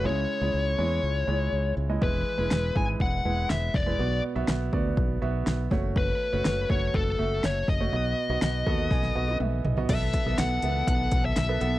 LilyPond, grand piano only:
\new Staff \with { instrumentName = "Grand piano" } { \time 4/4 \key b \mixolydian \tempo 4 = 122 << { cis4. r2 r8 | e4. r2 r8 | b,4. r2 r8 | r1 |
b,4. b''8 gis''8 fis''8 e''8 dis''8 | b,4. r2 r8 | } \\ { <gis e' cis''>8. <gis e' cis''>8. <gis e' cis''>4 <gis e' cis''>4 r16 <gis e' dis''>16 | <gis e' b'>8. <gis e' b'>8. <gis e' b'>4 <gis e' b'>4 r16 <gis e' b'>16 | <b fis' d''>8. <b fis' e''>8. <b fis' d''>4 <b fis' e''>4 <a fis' cis''>8~ | <a fis' cis''>8 r16 <a fis' cis''>8. <a fis' b'>4 <a fis' e''>4 r16 <a fis' cis''>16 |
<b fis' dis''>8. <b fis' dis''>8. <b fis' a'>4 <b fis' dis''>4 r16 <b fis' dis''>16 | <b a' e''>8. <b a' e''>8. <b a' e''>4. r16 <b a' b'>16 <b a' fis''>8 | } >> }